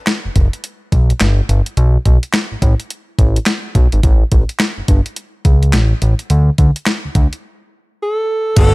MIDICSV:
0, 0, Header, 1, 6, 480
1, 0, Start_track
1, 0, Tempo, 566038
1, 1504, Time_signature, 4, 2, 24, 8
1, 7415, End_track
2, 0, Start_track
2, 0, Title_t, "Alto saxophone"
2, 0, Program_c, 0, 65
2, 6805, Note_on_c, 0, 69, 78
2, 7241, Note_off_c, 0, 69, 0
2, 7282, Note_on_c, 0, 69, 102
2, 7415, Note_off_c, 0, 69, 0
2, 7415, End_track
3, 0, Start_track
3, 0, Title_t, "Grand piano"
3, 0, Program_c, 1, 0
3, 7260, Note_on_c, 1, 59, 66
3, 7266, Note_on_c, 1, 62, 59
3, 7273, Note_on_c, 1, 66, 64
3, 7280, Note_on_c, 1, 69, 82
3, 7415, Note_off_c, 1, 59, 0
3, 7415, Note_off_c, 1, 62, 0
3, 7415, Note_off_c, 1, 66, 0
3, 7415, Note_off_c, 1, 69, 0
3, 7415, End_track
4, 0, Start_track
4, 0, Title_t, "String section"
4, 0, Program_c, 2, 48
4, 7268, Note_on_c, 2, 55, 83
4, 7269, Note_on_c, 2, 50, 85
4, 7269, Note_on_c, 2, 57, 78
4, 7269, Note_on_c, 2, 66, 93
4, 7270, Note_on_c, 2, 59, 78
4, 7415, Note_off_c, 2, 50, 0
4, 7415, Note_off_c, 2, 55, 0
4, 7415, Note_off_c, 2, 57, 0
4, 7415, Note_off_c, 2, 59, 0
4, 7415, Note_off_c, 2, 66, 0
4, 7415, End_track
5, 0, Start_track
5, 0, Title_t, "Analog synth bass"
5, 0, Program_c, 3, 38
5, 213, Note_on_c, 3, 30, 46
5, 249, Note_off_c, 3, 30, 0
5, 302, Note_on_c, 3, 30, 90
5, 408, Note_off_c, 3, 30, 0
5, 782, Note_on_c, 3, 35, 82
5, 954, Note_off_c, 3, 35, 0
5, 1025, Note_on_c, 3, 31, 85
5, 1196, Note_off_c, 3, 31, 0
5, 1264, Note_on_c, 3, 31, 97
5, 1369, Note_off_c, 3, 31, 0
5, 1503, Note_on_c, 3, 35, 110
5, 1674, Note_off_c, 3, 35, 0
5, 1743, Note_on_c, 3, 35, 101
5, 1849, Note_off_c, 3, 35, 0
5, 2135, Note_on_c, 3, 33, 48
5, 2171, Note_off_c, 3, 33, 0
5, 2223, Note_on_c, 3, 33, 99
5, 2329, Note_off_c, 3, 33, 0
5, 2701, Note_on_c, 3, 33, 88
5, 2873, Note_off_c, 3, 33, 0
5, 3182, Note_on_c, 3, 35, 95
5, 3288, Note_off_c, 3, 35, 0
5, 3333, Note_on_c, 3, 32, 81
5, 3398, Note_off_c, 3, 32, 0
5, 3423, Note_on_c, 3, 33, 106
5, 3595, Note_off_c, 3, 33, 0
5, 3663, Note_on_c, 3, 33, 91
5, 3768, Note_off_c, 3, 33, 0
5, 4050, Note_on_c, 3, 31, 44
5, 4087, Note_off_c, 3, 31, 0
5, 4142, Note_on_c, 3, 31, 92
5, 4248, Note_off_c, 3, 31, 0
5, 4622, Note_on_c, 3, 37, 84
5, 4865, Note_on_c, 3, 33, 94
5, 4877, Note_off_c, 3, 37, 0
5, 5035, Note_off_c, 3, 33, 0
5, 5106, Note_on_c, 3, 33, 95
5, 5211, Note_off_c, 3, 33, 0
5, 5345, Note_on_c, 3, 38, 113
5, 5515, Note_off_c, 3, 38, 0
5, 5585, Note_on_c, 3, 38, 95
5, 5690, Note_off_c, 3, 38, 0
5, 5977, Note_on_c, 3, 38, 48
5, 6012, Note_off_c, 3, 38, 0
5, 6065, Note_on_c, 3, 38, 93
5, 6170, Note_off_c, 3, 38, 0
5, 7266, Note_on_c, 3, 31, 98
5, 7415, Note_off_c, 3, 31, 0
5, 7415, End_track
6, 0, Start_track
6, 0, Title_t, "Drums"
6, 56, Note_on_c, 9, 39, 84
6, 59, Note_on_c, 9, 38, 110
6, 63, Note_on_c, 9, 42, 54
6, 140, Note_off_c, 9, 39, 0
6, 144, Note_off_c, 9, 38, 0
6, 147, Note_off_c, 9, 42, 0
6, 302, Note_on_c, 9, 42, 72
6, 303, Note_on_c, 9, 36, 81
6, 387, Note_off_c, 9, 42, 0
6, 388, Note_off_c, 9, 36, 0
6, 452, Note_on_c, 9, 42, 48
6, 537, Note_off_c, 9, 42, 0
6, 541, Note_on_c, 9, 42, 67
6, 626, Note_off_c, 9, 42, 0
6, 782, Note_on_c, 9, 36, 88
6, 783, Note_on_c, 9, 42, 66
6, 867, Note_off_c, 9, 36, 0
6, 868, Note_off_c, 9, 42, 0
6, 933, Note_on_c, 9, 42, 47
6, 1018, Note_off_c, 9, 42, 0
6, 1019, Note_on_c, 9, 39, 94
6, 1022, Note_on_c, 9, 38, 121
6, 1025, Note_on_c, 9, 42, 76
6, 1104, Note_off_c, 9, 39, 0
6, 1107, Note_off_c, 9, 38, 0
6, 1110, Note_off_c, 9, 42, 0
6, 1266, Note_on_c, 9, 42, 68
6, 1350, Note_off_c, 9, 42, 0
6, 1410, Note_on_c, 9, 42, 49
6, 1495, Note_off_c, 9, 42, 0
6, 1502, Note_on_c, 9, 42, 68
6, 1587, Note_off_c, 9, 42, 0
6, 1743, Note_on_c, 9, 36, 78
6, 1743, Note_on_c, 9, 42, 59
6, 1827, Note_off_c, 9, 42, 0
6, 1828, Note_off_c, 9, 36, 0
6, 1891, Note_on_c, 9, 42, 51
6, 1975, Note_off_c, 9, 42, 0
6, 1977, Note_on_c, 9, 39, 85
6, 1981, Note_on_c, 9, 38, 109
6, 1984, Note_on_c, 9, 42, 58
6, 2062, Note_off_c, 9, 39, 0
6, 2065, Note_off_c, 9, 38, 0
6, 2069, Note_off_c, 9, 42, 0
6, 2222, Note_on_c, 9, 36, 88
6, 2223, Note_on_c, 9, 42, 74
6, 2307, Note_off_c, 9, 36, 0
6, 2308, Note_off_c, 9, 42, 0
6, 2371, Note_on_c, 9, 42, 49
6, 2456, Note_off_c, 9, 42, 0
6, 2463, Note_on_c, 9, 42, 65
6, 2548, Note_off_c, 9, 42, 0
6, 2702, Note_on_c, 9, 36, 83
6, 2702, Note_on_c, 9, 42, 71
6, 2787, Note_off_c, 9, 36, 0
6, 2787, Note_off_c, 9, 42, 0
6, 2852, Note_on_c, 9, 42, 48
6, 2934, Note_on_c, 9, 39, 96
6, 2937, Note_off_c, 9, 42, 0
6, 2937, Note_on_c, 9, 38, 111
6, 2940, Note_on_c, 9, 42, 72
6, 3019, Note_off_c, 9, 39, 0
6, 3022, Note_off_c, 9, 38, 0
6, 3024, Note_off_c, 9, 42, 0
6, 3181, Note_on_c, 9, 36, 85
6, 3181, Note_on_c, 9, 42, 68
6, 3265, Note_off_c, 9, 36, 0
6, 3265, Note_off_c, 9, 42, 0
6, 3327, Note_on_c, 9, 42, 47
6, 3412, Note_off_c, 9, 42, 0
6, 3421, Note_on_c, 9, 42, 72
6, 3422, Note_on_c, 9, 36, 103
6, 3506, Note_off_c, 9, 42, 0
6, 3507, Note_off_c, 9, 36, 0
6, 3660, Note_on_c, 9, 42, 64
6, 3662, Note_on_c, 9, 36, 89
6, 3745, Note_off_c, 9, 42, 0
6, 3747, Note_off_c, 9, 36, 0
6, 3809, Note_on_c, 9, 42, 50
6, 3894, Note_off_c, 9, 42, 0
6, 3895, Note_on_c, 9, 39, 88
6, 3898, Note_on_c, 9, 38, 110
6, 3902, Note_on_c, 9, 42, 54
6, 3980, Note_off_c, 9, 39, 0
6, 3983, Note_off_c, 9, 38, 0
6, 3987, Note_off_c, 9, 42, 0
6, 4141, Note_on_c, 9, 42, 74
6, 4142, Note_on_c, 9, 36, 84
6, 4226, Note_off_c, 9, 42, 0
6, 4227, Note_off_c, 9, 36, 0
6, 4290, Note_on_c, 9, 42, 49
6, 4375, Note_off_c, 9, 42, 0
6, 4379, Note_on_c, 9, 42, 64
6, 4464, Note_off_c, 9, 42, 0
6, 4621, Note_on_c, 9, 42, 66
6, 4622, Note_on_c, 9, 36, 90
6, 4706, Note_off_c, 9, 36, 0
6, 4706, Note_off_c, 9, 42, 0
6, 4771, Note_on_c, 9, 42, 44
6, 4856, Note_off_c, 9, 42, 0
6, 4859, Note_on_c, 9, 39, 93
6, 4862, Note_on_c, 9, 38, 116
6, 4865, Note_on_c, 9, 42, 72
6, 4944, Note_off_c, 9, 39, 0
6, 4947, Note_off_c, 9, 38, 0
6, 4949, Note_off_c, 9, 42, 0
6, 5103, Note_on_c, 9, 42, 70
6, 5188, Note_off_c, 9, 42, 0
6, 5250, Note_on_c, 9, 42, 49
6, 5335, Note_off_c, 9, 42, 0
6, 5342, Note_on_c, 9, 42, 73
6, 5427, Note_off_c, 9, 42, 0
6, 5582, Note_on_c, 9, 42, 65
6, 5584, Note_on_c, 9, 36, 76
6, 5667, Note_off_c, 9, 42, 0
6, 5669, Note_off_c, 9, 36, 0
6, 5732, Note_on_c, 9, 42, 49
6, 5817, Note_off_c, 9, 42, 0
6, 5818, Note_on_c, 9, 39, 87
6, 5821, Note_on_c, 9, 38, 110
6, 5825, Note_on_c, 9, 42, 61
6, 5903, Note_off_c, 9, 39, 0
6, 5906, Note_off_c, 9, 38, 0
6, 5909, Note_off_c, 9, 42, 0
6, 6064, Note_on_c, 9, 42, 73
6, 6065, Note_on_c, 9, 36, 83
6, 6149, Note_off_c, 9, 42, 0
6, 6150, Note_off_c, 9, 36, 0
6, 6213, Note_on_c, 9, 42, 50
6, 6298, Note_off_c, 9, 42, 0
6, 7263, Note_on_c, 9, 42, 76
6, 7263, Note_on_c, 9, 49, 103
6, 7263, Note_on_c, 9, 54, 62
6, 7265, Note_on_c, 9, 36, 117
6, 7348, Note_off_c, 9, 42, 0
6, 7348, Note_off_c, 9, 49, 0
6, 7348, Note_off_c, 9, 54, 0
6, 7350, Note_off_c, 9, 36, 0
6, 7415, End_track
0, 0, End_of_file